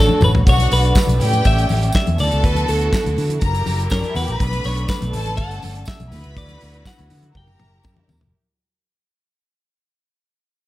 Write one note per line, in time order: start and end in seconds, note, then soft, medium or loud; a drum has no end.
0.00 0.44 D3 medium
0.00 0.46 A3 medium
0.00 0.18 D4 medium
0.00 0.45 F#4 medium
0.00 0.21 A4 medium
0.00 0.24 A4 medium
0.00 0.46 C#5 medium
0.00 0.21 A5 loud
0.09 muted conga soft
0.09 high conga medium
0.21 0.32 A1 loud
0.21 0.30 B4 medium
0.21 mid tom medium
0.21 tambourine medium
0.21 high conga medium
0.21 low conga medium
0.34 0.44 A#1 medium
0.34 floor tom medium
0.47 0.67 B1 medium
0.47 2.17 A3 medium
0.47 1.20 B3 medium
0.47 1.20 D4 medium
0.47 0.95 F#4 medium
0.47 0.71 C#5 medium
0.47 0.95 F#5 loud
0.47 kick loud
0.47 closed hi-hat medium
0.47 tambourine medium
0.58 closed hi-hat medium
0.58 muted conga soft
0.58 high conga medium
0.71 0.91 B1 medium
0.71 1.47 B4 loud
0.71 open hi-hat medium
0.71 tambourine medium
0.85 closed hi-hat soft
0.95 kick loud
0.95 snare loud
0.95 clap loud
0.95 tambourine medium
1.07 1.18 B1 loud
1.07 closed hi-hat medium
1.07 muted conga soft
1.07 high conga medium
1.20 1.40 A2 medium
1.20 2.18 G3 medium
1.20 2.18 C#4 medium
1.20 1.93 G4 loud
1.20 1.93 G5 loud
1.20 open hi-hat medium
1.20 tambourine soft
1.20 low conga medium
1.33 closed hi-hat medium
1.33 high conga medium
1.44 1.65 A1 loud
1.44 1.94 E5 loud
1.44 kick medium
1.44 closed hi-hat medium
1.44 tambourine soft
1.44 muted conga soft
1.58 closed hi-hat soft
1.58 muted conga soft
1.69 1.89 A1 medium
1.69 open hi-hat medium
1.69 tambourine medium
1.69 high conga medium
1.83 closed hi-hat soft
1.92 2.20 E5 loud
1.92 kick loud
1.92 snare loud
1.92 clap loud
1.92 tambourine loud
2.07 2.17 E2 medium
2.07 closed hi-hat soft
2.07 muted conga soft
2.07 high conga medium
2.18 2.29 D2 loud
2.18 3.41 D3 medium
2.18 3.41 B3 medium
2.18 3.41 E4 medium
2.18 3.41 F#4 medium
2.18 3.16 A4 loud
2.18 2.45 D5 loud
2.18 3.15 A5 loud
2.18 open hi-hat medium
2.18 tambourine medium
2.18 low conga medium
2.31 2.42 C#2 loud
2.31 closed hi-hat soft
2.44 2.63 D2 loud
2.44 2.67 B4 medium
2.44 kick loud
2.44 closed hi-hat medium
2.44 tambourine medium
2.44 muted conga soft
2.55 closed hi-hat soft
2.55 muted conga soft
2.55 high conga medium
2.68 2.88 D2 loud
2.68 3.38 A4 medium
2.68 open hi-hat medium
2.68 tambourine medium
2.81 closed hi-hat soft
2.93 kick loud
2.93 snare loud
2.93 clap loud
2.93 tambourine loud
3.04 3.15 D2 medium
3.04 closed hi-hat medium
3.04 muted conga soft
3.04 high conga medium
3.17 3.37 D3 loud
3.17 open hi-hat medium
3.17 tambourine soft
3.17 low conga medium
3.29 closed hi-hat medium
3.29 high conga medium
3.41 3.62 F#1 loud
3.41 4.40 F#3 medium
3.41 4.40 E4 medium
3.41 4.40 G4 medium
3.41 3.85 A#4 medium
3.41 4.40 A#4 medium
3.41 3.85 A#5 loud
3.41 kick medium
3.41 closed hi-hat medium
3.41 tambourine soft
3.41 muted conga soft
3.53 closed hi-hat soft
3.53 muted conga soft
3.66 3.86 F#1 medium
3.66 open hi-hat medium
3.66 tambourine medium
3.66 high conga medium
3.80 closed hi-hat soft
3.90 4.01 F#2 loud
3.90 4.00 C#4 medium
3.90 4.16 A#4 medium
3.90 4.00 C#5 medium
3.90 kick loud
3.90 snare loud
3.90 clap medium
3.90 tambourine loud
4.00 4.07 D4 medium
4.00 4.07 D5 medium
4.00 high conga medium
4.04 closed hi-hat soft
4.09 4.16 E4 medium
4.09 4.16 E5 medium
4.14 4.25 E2 loud
4.14 4.24 F#4 medium
4.14 4.65 B4 medium
4.14 4.24 F#5 medium
4.14 open hi-hat medium
4.14 tambourine medium
4.14 low conga medium
4.25 4.38 A#1 medium
4.25 4.33 G4 medium
4.25 4.32 G5 medium
4.25 closed hi-hat medium
4.31 4.40 A#4 medium
4.31 4.40 A#5 loud
4.39 4.60 B1 loud
4.39 6.10 A3 medium
4.39 5.13 B3 medium
4.39 5.13 D4 medium
4.39 4.88 B4 medium
4.39 4.88 B5 loud
4.39 kick loud
4.39 closed hi-hat medium
4.39 tambourine medium
4.39 muted conga soft
4.51 closed hi-hat medium
4.51 muted conga soft
4.51 high conga medium
4.64 4.84 B1 loud
4.64 4.89 C#5 medium
4.64 open hi-hat medium
4.64 tambourine medium
4.77 closed hi-hat soft
4.88 5.37 B4 medium
4.88 kick loud
4.88 snare loud
4.88 clap medium
4.88 tambourine loud
5.00 5.14 B1 loud
5.00 closed hi-hat medium
5.00 muted conga soft
5.00 high conga medium
5.13 5.40 A1 loud
5.13 6.11 G3 medium
5.13 6.12 C#4 medium
5.13 5.86 A4 loud
5.13 5.86 A5 loud
5.13 open hi-hat medium
5.13 low conga medium
5.26 closed hi-hat soft
5.26 high conga medium
5.37 5.88 F#5 medium
5.37 kick loud
5.37 closed hi-hat medium
5.37 muted conga soft
5.51 closed hi-hat medium
5.62 5.83 G1 medium
5.62 open hi-hat medium
5.62 tambourine medium
5.62 high conga medium
5.75 closed hi-hat soft
5.86 6.37 E5 loud
5.86 kick loud
5.86 snare loud
5.86 clap loud
5.86 tambourine loud
6.00 6.10 B1 medium
6.00 closed hi-hat soft
6.00 muted conga soft
6.00 high conga loud
6.11 6.22 D2 loud
6.11 7.34 D3 medium
6.11 7.34 B3 medium
6.11 7.33 E4 medium
6.11 7.34 F#4 medium
6.11 7.08 B4 loud
6.11 7.08 B5 loud
6.11 open hi-hat medium
6.11 tambourine medium
6.11 low conga medium
6.24 6.35 C#2 medium
6.24 closed hi-hat medium
6.36 6.56 D2 medium
6.36 6.87 D5 medium
6.36 kick loud
6.36 closed hi-hat medium
6.36 tambourine medium
6.36 muted conga soft
6.49 closed hi-hat medium
6.49 muted conga soft
6.49 high conga medium
6.61 6.81 D2 loud
6.61 open hi-hat medium
6.61 tambourine medium
6.74 closed hi-hat soft
6.86 7.37 F#5 loud
6.86 kick loud
6.86 snare loud
6.86 clap medium
6.86 tambourine loud
6.98 7.09 D2 medium
6.98 closed hi-hat soft
6.98 high conga medium
7.10 7.31 D3 loud
7.10 open hi-hat medium
7.10 tambourine soft
7.10 low conga medium
7.23 closed hi-hat soft
7.23 high conga medium
7.34 7.55 F#1 loud
7.34 8.32 F#3 medium
7.34 8.32 E4 medium
7.34 8.32 G4 medium
7.34 8.32 A#4 medium
7.34 8.07 A#4 medium
7.34 8.06 G5 medium
7.34 8.07 A#5 loud
7.34 kick medium
7.34 high tom medium
7.34 tambourine soft
7.34 muted conga soft
7.47 high tom medium
7.47 muted conga soft
7.60 7.80 F#1 medium
7.60 mid tom medium
7.60 tambourine soft
7.60 high conga medium
7.83 7.95 F#2 loud
7.83 kick loud
7.83 mid tom medium
7.83 tambourine medium
7.83 muted conga soft
7.96 mid tom medium
7.96 muted conga soft
7.96 high conga medium
8.08 8.19 E2 medium
8.08 floor tom medium
8.08 tambourine medium
8.08 high conga medium
8.08 low conga medium
8.21 8.32 F1 medium
8.21 floor tom medium